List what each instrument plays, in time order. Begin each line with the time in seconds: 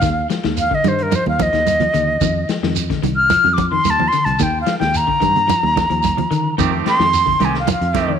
Already playing: flute F5
0.02 fingered electric bass D#2, clean electric guitar D#3, kick, snare, closed hi-hat, low conga, shekere
0.30 clean electric guitar F3, snare, closed hi-hat, shekere
0.43 fingered electric bass D#2, clean electric guitar D#3, snare, closed hi-hat
0.57 flute F5, closed hi-hat, shekere
0.71 clean electric guitar D3, flute D#5, kick
0.84 fingered electric bass G2, clean electric guitar D#3, closed hi-hat, high conga, shekere
0.88 flute C5
0.99 closed hi-hat
1.03 flute A#4
1.11 clean electric guitar F3, closed hi-hat, high conga, shekere
1.15 flute C5
1.26 fingered electric bass D#2, flute F5, high conga
1.39 clean electric guitar F3, flute D#5, kick, closed hi-hat, high conga, shekere
1.53 fingered electric bass D#2, clean electric guitar D#3, snare, closed hi-hat
1.66 closed hi-hat, high conga, shekere
1.80 clean electric guitar F3, closed hi-hat, low conga
1.94 fingered electric bass D#2, clean electric guitar D3, closed hi-hat, shekere
2.21 fingered electric bass F2, clean electric guitar D#3, kick, closed hi-hat, low conga, shekere
2.49 clean electric guitar F3, muted fingered electric bass stroke, snare, closed hi-hat, shekere
2.63 fingered electric bass F2, clean electric guitar D#3, snare
2.76 closed hi-hat, shekere
2.90 clean electric guitar D3, kick, snare, closed hi-hat
3.03 fingered electric bass C2, clean electric guitar D#3, closed hi-hat, high conga, shekere
3.16 flute F6
3.30 clean electric guitar F3, closed hi-hat, high conga, shekere
3.44 fingered electric bass F2, closed hi-hat, high conga
3.53 flute D6, shekere
3.58 clean electric guitar F3, kick, closed hi-hat, high conga
3.71 clean electric guitar D#3, flute C6
3.84 fingered electric bass D#2, closed hi-hat, high conga, shekere
3.90 flute A5
3.99 clean electric guitar F3, low conga
4.08 flute C6
4.12 clean electric guitar D3, closed hi-hat, shekere
4.25 fingered electric bass C2, flute A5, closed hi-hat
4.39 fingered electric bass D#2, clean electric guitar D#3, flute G5, kick, snare, closed hi-hat, low conga, shekere
4.61 flute F5
4.66 clean electric guitar F3, snare, closed hi-hat, shekere
4.79 fingered electric bass D#2, clean electric guitar D#3, flute G5, snare, closed hi-hat
4.94 flute A#5, closed hi-hat, shekere
5.07 clean electric guitar D3, kick
5.20 fingered electric bass G2, clean electric guitar D#3, kick, closed hi-hat, high conga, shekere
5.36 closed hi-hat, low conga
5.48 clean electric guitar F3, closed hi-hat, high conga, shekere
5.63 fingered electric bass D#2, high conga
5.76 clean electric guitar F3, kick, snare, closed hi-hat, high conga, shekere
5.90 fingered electric bass D#2, clean electric guitar F3, closed hi-hat
6.03 kick, closed hi-hat, high conga, shekere
6.17 clean electric guitar F3, closed hi-hat, low conga
6.31 clean electric guitar D3, fingered electric bass D#3, closed hi-hat, shekere
6.58 fingered electric bass F2, clean electric guitar D#3 A3 C4 G4, kick, closed hi-hat, low conga, shekere
6.72 clean electric guitar A3 C4 G4
6.86 clean electric guitar D#3 A3 C4 G4, flute C6, muted clean electric guitar stroke, muted fingered electric bass stroke, snare, closed hi-hat, shekere
6.99 fingered electric bass F2, clean electric guitar D#3, snare
7.13 closed hi-hat, shekere
7.26 clean electric guitar D3, kick, closed hi-hat
7.40 fingered electric bass C2, clean electric guitar D#3 A3 C4 G4, closed hi-hat, high conga, shekere
7.45 flute G#5
7.54 snare
7.60 flute F5
7.67 clean electric guitar F3, closed hi-hat, high conga, shekere
7.73 flute F5
7.81 fingered electric bass F2, closed hi-hat
7.94 clean electric guitar D#3 F3 A3 C4 G4, kick, snare, closed hi-hat, high conga, shekere
8.09 clean electric guitar D#3